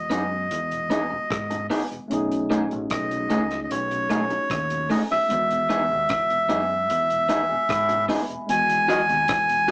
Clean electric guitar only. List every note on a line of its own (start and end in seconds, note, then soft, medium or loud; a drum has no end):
0.10 0.21 B3 medium
0.10 0.22 D#4 medium
0.10 0.22 G#4 medium
0.90 1.01 B3 medium
0.90 1.02 D#4 medium
0.90 1.02 G#4 medium
1.10 muted clean electric guitar stroke soft
1.51 muted clean electric guitar stroke soft
1.70 1.81 B3 medium
1.70 1.82 D#4 medium
1.70 1.82 G#4 medium
2.50 2.61 A3 medium
2.50 2.61 D#4 medium
2.50 2.62 G#4 medium
3.30 3.41 A3 medium
3.30 3.41 D#4 medium
3.30 3.42 G#4 medium
4.10 4.21 A3 medium
4.10 4.21 D#4 medium
4.10 4.22 G#4 medium
4.30 muted clean electric guitar stroke soft
4.90 5.01 A3 medium
4.90 5.01 D#4 medium
4.90 5.01 G#4 medium
5.69 5.81 B3 medium
5.69 5.81 D#4 medium
5.69 5.81 G#4 medium
6.49 6.60 B3 medium
6.49 6.61 D#4 medium
6.49 6.61 G#4 medium
7.29 7.40 B3 medium
7.29 7.40 D#4 medium
7.29 7.41 G#4 medium
7.49 muted clean electric guitar stroke soft
7.89 muted clean electric guitar stroke soft
8.08 8.20 B3 medium
8.08 8.20 D#4 medium
8.08 8.21 G#4 medium
8.88 9.00 F#4 medium
8.88 9.00 G#4 medium
8.88 9.00 D#5 medium
9.68 9.71 F#4 medium